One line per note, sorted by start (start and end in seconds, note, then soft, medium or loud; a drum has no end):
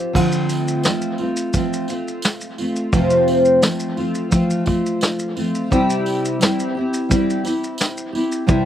0.00 0.14 F3 medium
0.00 0.14 C4 medium
0.00 0.15 F4 medium
0.00 0.16 G4 medium
0.13 0.84 D3 medium
0.13 0.84 F3 medium
0.13 0.86 A3 medium
0.13 0.87 C4 medium
0.13 0.88 F4 medium
0.13 kick medium
0.13 crash medium
0.13 tambourine soft
0.32 shaker medium
0.49 tambourine soft
0.49 shaker medium
0.68 shaker medium
0.83 1.19 F3 soft
0.83 1.20 A3 medium
0.83 1.20 C4 medium
0.83 snare loud
0.83 tambourine medium
0.83 shaker medium
0.88 1.18 F4 medium
1.02 shaker soft
1.18 1.55 C4 soft
1.18 1.54 F4 medium
1.18 tambourine soft
1.23 1.54 A3 soft
1.37 shaker medium
1.53 1.89 F3 medium
1.53 1.90 A3 medium
1.53 1.89 C4 medium
1.53 kick medium
1.53 tambourine soft
1.53 shaker medium
1.57 1.87 F4 medium
1.73 shaker soft
1.88 2.59 C4 soft
1.88 2.58 F4 soft
1.88 tambourine soft
1.88 shaker soft
1.92 2.61 A3 soft
2.08 shaker soft
2.22 snare loud
2.22 tambourine medium
2.22 shaker soft
2.41 shaker soft
2.58 2.93 A3 soft
2.58 2.93 C4 soft
2.58 2.93 F4 soft
2.58 tambourine soft
2.76 shaker soft
2.93 3.63 F2 medium
2.93 3.63 C3 medium
2.93 3.61 F3 medium
2.93 3.62 A3 medium
2.93 3.63 C4 medium
2.93 3.64 F4 medium
2.93 kick medium
2.93 tambourine soft
2.93 shaker soft
3.10 shaker medium
3.28 tambourine soft
3.45 shaker medium
3.62 3.97 F3 soft
3.62 3.98 A3 medium
3.62 3.95 F4 medium
3.62 snare loud
3.62 tambourine medium
3.62 shaker medium
3.80 shaker soft
3.97 4.29 F3 soft
3.97 4.30 A3 soft
3.97 4.31 C4 soft
3.97 4.32 F4 medium
3.97 tambourine soft
4.15 shaker medium
4.30 4.66 F3 medium
4.30 4.67 A3 medium
4.30 4.66 C4 medium
4.30 4.64 F4 medium
4.30 kick medium
4.30 tambourine soft
4.30 shaker medium
4.50 shaker medium
4.66 5.38 F3 soft
4.66 5.37 A3 medium
4.66 5.36 C4 soft
4.66 5.35 F4 medium
4.66 kick medium
4.66 tambourine soft
4.86 shaker soft
5.01 snare loud
5.01 tambourine medium
5.01 shaker medium
5.19 shaker soft
5.36 5.71 F3 soft
5.36 5.71 A3 soft
5.36 5.70 C4 medium
5.36 5.71 F4 medium
5.36 tambourine soft
5.55 shaker soft
5.71 6.40 C3 medium
5.71 6.39 G3 medium
5.71 6.40 C4 medium
5.71 6.41 E4 medium
5.71 6.43 G4 medium
5.71 kick medium
5.71 shaker medium
5.90 shaker medium
6.06 tambourine medium
6.25 shaker medium
6.39 6.75 G3 medium
6.39 6.76 C4 medium
6.39 6.75 E4 medium
6.39 6.74 G4 medium
6.39 snare loud
6.39 tambourine medium
6.39 shaker medium
6.60 shaker soft
6.75 7.09 C4 medium
6.75 7.10 E4 medium
6.75 7.10 G4 medium
6.94 shaker medium
7.09 7.44 G3 medium
7.09 7.45 C4 medium
7.09 7.44 E4 medium
7.09 7.42 G4 medium
7.09 kick medium
7.09 tambourine soft
7.09 shaker medium
7.30 shaker medium
7.44 8.16 C4 soft
7.44 8.14 E4 medium
7.44 8.12 G4 soft
7.44 tambourine soft
7.44 shaker soft
7.64 shaker soft
7.78 snare loud
7.78 tambourine medium
7.78 shaker medium
7.97 shaker medium
8.13 8.46 C4 soft
8.13 8.47 E4 soft
8.13 8.47 G4 medium
8.13 tambourine soft
8.32 shaker soft
8.47 8.65 C3 medium
8.47 8.65 G3 medium
8.47 8.65 C4 medium
8.47 8.65 E4 loud
8.47 8.65 G4 medium
8.47 kick loud
8.47 shaker medium